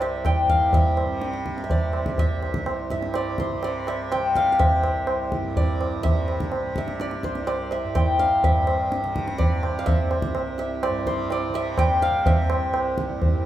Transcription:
0.00 2.28 C2 medium
0.00 0.44 G2 medium
0.00 1.05 C3 medium
0.00 2.17 C5 medium
0.00 1.70 D5 medium
0.00 0.55 E5 medium
0.00 0.25 G5 medium
0.00 0.65 A5 medium
0.00 tabla na medium
0.25 2.32 G5 medium
0.25 tabla na medium
0.25 tabla ge medium
0.44 2.90 G2 soft
0.49 0.80 F5 medium
0.49 tabla ge soft
0.73 1.63 E5 medium
0.73 tabla tin medium
0.73 tabla ge medium
0.97 tabla na medium
1.05 1.68 C3 medium
1.21 tabla te medium
1.34 tabla te soft
1.46 tabla ke medium
1.58 tabla te medium
1.64 3.54 C3 soft
1.64 2.19 E5 medium
1.70 3.15 D5 medium
1.70 tabla tin medium
1.70 tabla ge medium
1.93 tabla na medium
2.06 tabla ke medium
2.18 2.91 E5 medium
2.18 tabla tin medium
2.18 tabla ge medium
2.28 4.76 C2 medium
2.43 tabla na medium
2.54 tabla ke medium
2.66 tabla na medium
2.90 5.38 G2 medium
2.90 3.87 E5 medium
2.90 tabla ke soft
3.02 tabla te medium
3.14 3.64 D5 medium
3.14 tabla na medium
3.38 6.04 C5 medium
3.38 tabla ke medium
3.54 4.14 C3 medium
3.63 5.56 D5 medium
3.63 tabla na medium
3.87 4.42 E5 medium
3.87 tabla na medium
4.12 6.00 C3 medium
4.12 6.19 G5 medium
4.12 tabla na medium
4.35 4.52 F5 medium
4.35 tabla ke medium
4.52 4.65 F5 medium
4.59 6.03 E5 medium
4.59 tabla tin medium
4.59 tabla ge medium
4.77 7.23 C2 soft
4.84 tabla na medium
5.07 tabla na medium
5.32 tabla ke medium
5.38 7.84 G2 medium
5.57 7.00 D5 medium
5.57 tabla tin medium
5.57 tabla ge medium
5.81 tabla na medium
6.00 6.62 C3 medium
6.00 6.77 E5 medium
6.05 tabla tin medium
6.05 tabla ge medium
6.28 tabla na medium
6.40 tabla ke medium
6.52 tabla na medium
6.62 9.05 C3 medium
6.76 7.71 E5 medium
6.76 tabla ke medium
6.88 tabla te medium
7.00 7.47 D5 medium
7.00 tabla te medium
7.11 tabla te medium
7.23 10.28 C2 medium
7.23 9.88 C5 medium
7.23 tabla ke soft
7.35 tabla te medium
7.47 9.38 D5 medium
7.47 tabla na medium
7.71 8.25 E5 medium
7.71 tabla na medium
7.84 8.44 G2 medium
7.95 10.02 G5 medium
7.95 tabla na medium
7.95 tabla ge medium
8.19 8.50 F5 medium
8.19 tabla te medium
8.44 10.89 G2 medium
8.44 9.85 E5 medium
8.44 tabla tin medium
8.44 tabla ge medium
8.67 tabla na medium
8.92 tabla te medium
9.04 9.65 C3 medium
9.04 tabla te medium
9.16 tabla ke medium
9.28 tabla te medium
9.38 10.83 D5 medium
9.38 tabla tin medium
9.38 tabla ge medium
9.63 11.49 C3 medium
9.63 tabla na medium
9.79 9.92 F5 medium
9.86 10.58 E5 medium
9.86 tabla tin medium
9.86 tabla ge medium
10.11 tabla na medium
10.22 tabla ke medium
10.29 12.72 C2 medium
10.35 tabla na medium
10.58 11.55 E5 medium
10.58 tabla te medium
10.83 11.32 D5 medium
10.83 tabla na medium
10.89 13.32 G2 medium
11.07 13.46 C5 medium
11.07 tabla ke medium
11.30 13.46 D5 medium
11.30 tabla na medium
11.49 12.11 C3 medium
11.54 12.08 E5 medium
11.54 tabla na medium
11.78 13.45 G5 loud
11.78 tabla na medium
11.78 tabla ge medium
12.02 12.32 F5 medium
12.02 tabla te medium
12.11 13.46 C3 medium
12.26 13.46 E5 medium
12.26 tabla tin medium
12.26 tabla ge medium
12.50 tabla na medium
12.72 13.46 C2 medium
12.72 tabla na medium
12.98 tabla ke medium
13.22 tabla tin medium
13.22 tabla ge medium
13.33 13.46 G2 medium

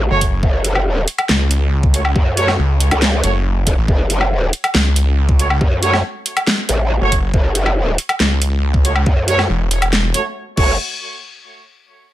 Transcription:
0.11 0.41 F#1 loud
0.11 0.22 A3 loud
0.11 0.22 F#4 medium
0.11 0.22 C#5 loud
0.21 kick medium
0.21 closed hi-hat medium
0.43 1.06 F#1 loud
0.43 kick loud
0.64 closed hi-hat medium
0.75 low woodblock medium
1.08 closed hi-hat medium
1.19 closed hi-hat soft
1.19 low woodblock medium
1.29 2.14 C#2 medium
1.29 snare loud
1.51 closed hi-hat medium
1.83 kick loud
1.94 2.01 A3 medium
1.94 2.01 F#4 medium
1.94 2.01 C#5 medium
1.94 closed hi-hat medium
2.05 low woodblock medium
2.16 2.57 F#2 loud
2.16 kick loud
2.37 2.49 A3 loud
2.37 2.49 F#4 medium
2.37 2.49 C#5 loud
2.37 closed hi-hat medium
2.48 snare soft
2.48 low woodblock medium
2.59 2.90 C#2 loud
2.80 closed hi-hat medium
2.91 3.22 C#2 loud
2.91 closed hi-hat soft
2.91 low woodblock medium
3.02 snare loud
3.24 3.65 F#1 medium
3.24 3.31 A3 medium
3.24 3.31 F#4 medium
3.24 3.31 C#5 loud
3.24 closed hi-hat medium
3.67 3.76 E1 loud
3.67 kick medium
3.67 closed hi-hat medium
3.77 3.87 A1 loud
3.88 4.51 F#1 medium
3.88 kick loud
4.10 closed hi-hat medium
4.21 low woodblock medium
4.53 closed hi-hat medium
4.64 closed hi-hat soft
4.64 low woodblock medium
4.75 5.59 C#2 loud
4.75 snare loud
4.96 closed hi-hat medium
5.29 kick loud
5.39 5.47 A3 medium
5.39 5.47 F#4 medium
5.39 5.47 C#5 medium
5.39 closed hi-hat medium
5.50 low woodblock medium
5.61 6.02 F#2 loud
5.61 kick loud
5.82 5.94 A3 loud
5.82 5.94 F#4 medium
5.82 5.94 C#5 loud
5.82 closed hi-hat medium
5.93 snare soft
5.93 low woodblock medium
6.26 closed hi-hat medium
6.37 closed hi-hat soft
6.37 low woodblock medium
6.47 snare loud
6.69 7.00 A1 loud
6.69 closed hi-hat medium
7.01 7.32 F#1 loud
7.01 7.13 A3 loud
7.01 7.13 F#4 medium
7.01 7.13 C#5 loud
7.12 kick medium
7.12 closed hi-hat medium
7.34 7.97 F#1 loud
7.34 kick loud
7.55 closed hi-hat medium
7.66 low woodblock medium
7.98 closed hi-hat medium
8.09 closed hi-hat soft
8.09 low woodblock medium
8.20 9.05 C#2 medium
8.20 snare loud
8.42 closed hi-hat medium
8.74 kick loud
8.85 8.92 A3 medium
8.85 8.92 F#4 medium
8.85 8.92 C#5 medium
8.85 closed hi-hat medium
8.96 low woodblock medium
9.06 9.48 F#2 loud
9.06 kick loud
9.28 9.40 A3 medium
9.28 9.40 F#4 medium
9.28 9.40 C#5 loud
9.28 closed hi-hat medium
9.39 snare soft
9.39 low woodblock medium
9.49 10.12 E1 loud
9.71 closed hi-hat medium
9.82 closed hi-hat soft
9.82 low woodblock medium
9.93 snare loud
10.14 10.21 A3 medium
10.14 10.21 F#4 medium
10.14 10.21 C#5 loud
10.14 closed hi-hat medium
10.57 10.77 F#1 loud
10.57 10.73 A3 medium
10.57 10.73 F#4 medium
10.57 10.73 C#5 loud
10.57 kick loud
10.57 crash medium

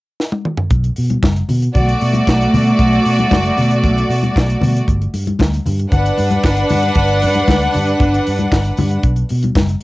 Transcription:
0.20 snare medium
0.32 high tom medium
0.45 mid tom medium
0.58 floor tom medium
0.70 0.89 B1 loud
0.70 kick loud
0.70 closed hi-hat medium
0.70 muted conga soft
0.84 closed hi-hat soft
0.96 1.16 B2 medium
0.96 open hi-hat medium
1.10 closed hi-hat soft
1.10 high conga medium
1.23 1.41 F#1 medium
1.23 kick medium
1.23 snare medium
1.23 clap medium
1.23 high conga medium
1.36 closed hi-hat soft
1.49 1.68 B2 medium
1.49 open hi-hat medium
1.49 muted conga soft
1.49 low conga medium
1.62 closed hi-hat soft
1.75 1.93 B1 loud
1.75 4.83 A3 medium
1.75 4.83 F#4 medium
1.75 4.83 D5 medium
1.75 kick loud
1.75 closed hi-hat medium
1.75 low conga medium
1.88 closed hi-hat soft
2.01 2.20 B2 medium
2.01 open hi-hat medium
2.01 muted conga soft
2.13 closed hi-hat soft
2.13 high conga medium
2.27 2.46 B1 medium
2.27 kick medium
2.27 snare loud
2.27 clap medium
2.27 muted conga soft
2.41 closed hi-hat soft
2.53 2.71 B2 medium
2.53 open hi-hat medium
2.53 muted conga soft
2.53 high conga medium
2.53 low conga medium
2.68 closed hi-hat soft
2.79 2.97 B1 loud
2.79 kick loud
2.79 closed hi-hat medium
2.93 closed hi-hat soft
3.05 3.24 B2 medium
3.05 open hi-hat medium
3.05 muted conga soft
3.19 closed hi-hat soft
3.19 high conga medium
3.31 3.50 F#1 medium
3.31 kick medium
3.31 snare loud
3.31 clap medium
3.31 high conga medium
3.45 closed hi-hat soft
3.57 3.86 B2 medium
3.57 open hi-hat medium
3.57 muted conga soft
3.57 low conga medium
3.71 closed hi-hat soft
3.84 4.02 B1 loud
3.84 kick loud
3.84 closed hi-hat medium
3.84 low conga medium
3.98 closed hi-hat soft
4.09 4.27 B2 medium
4.09 open hi-hat medium
4.09 muted conga soft
4.23 closed hi-hat soft
4.23 high conga medium
4.36 4.54 B1 medium
4.36 kick medium
4.36 snare loud
4.36 clap medium
4.36 muted conga soft
4.50 closed hi-hat soft
4.62 4.80 B2 medium
4.62 open hi-hat medium
4.62 high conga medium
4.62 low conga medium
4.77 closed hi-hat soft
4.88 5.06 G1 loud
4.88 kick loud
4.88 closed hi-hat medium
5.02 closed hi-hat soft
5.14 5.32 G2 medium
5.14 open hi-hat medium
5.14 muted conga soft
5.27 closed hi-hat soft
5.27 high conga medium
5.39 5.58 D2 medium
5.39 kick medium
5.39 snare medium
5.39 clap medium
5.39 muted conga soft
5.39 high conga medium
5.54 closed hi-hat soft
5.66 5.85 G2 medium
5.66 open hi-hat medium
5.66 low conga medium
5.80 closed hi-hat soft
5.90 6.10 G1 loud
5.90 9.00 D4 medium
5.90 9.00 B4 medium
5.90 9.00 F#5 medium
5.90 kick loud
5.90 closed hi-hat medium
5.90 muted conga soft
5.90 low conga medium
6.06 closed hi-hat soft
6.18 6.37 G2 medium
6.18 open hi-hat medium
6.18 muted conga soft
6.31 closed hi-hat soft
6.31 high conga medium
6.44 6.62 G1 medium
6.44 kick medium
6.44 snare loud
6.44 clap medium
6.44 muted conga soft
6.57 closed hi-hat soft
6.69 6.89 G2 medium
6.69 open hi-hat medium
6.69 high conga medium
6.69 low conga medium
6.83 closed hi-hat soft
6.95 7.25 G1 loud
6.95 kick loud
6.95 closed hi-hat medium
7.09 closed hi-hat soft
7.22 7.41 G2 medium
7.22 open hi-hat medium
7.22 muted conga soft
7.35 closed hi-hat soft
7.35 high conga medium
7.48 7.67 D2 medium
7.48 kick medium
7.48 snare medium
7.48 clap medium
7.48 high conga medium
7.62 closed hi-hat soft
7.73 7.93 G2 medium
7.73 open hi-hat medium
7.73 muted conga soft
7.73 low conga medium
7.87 closed hi-hat soft
8.00 8.18 G1 loud
8.00 kick loud
8.00 closed hi-hat medium
8.00 muted conga soft
8.00 low conga medium
8.14 closed hi-hat soft
8.26 8.45 G2 medium
8.26 open hi-hat medium
8.39 closed hi-hat soft
8.39 high conga medium
8.52 8.71 G1 medium
8.52 kick medium
8.52 snare loud
8.52 clap medium
8.65 closed hi-hat soft
8.77 8.97 G2 medium
8.77 open hi-hat medium
8.77 muted conga soft
8.77 high conga medium
8.77 low conga medium
8.91 closed hi-hat soft
9.03 9.22 B1 loud
9.03 kick loud
9.03 closed hi-hat medium
9.16 closed hi-hat soft
9.29 9.49 B2 medium
9.29 open hi-hat medium
9.29 muted conga soft
9.43 closed hi-hat soft
9.43 high conga medium
9.55 9.74 F#1 medium
9.55 kick medium
9.55 snare loud
9.55 clap medium
9.55 muted conga soft
9.55 high conga medium
9.69 closed hi-hat soft

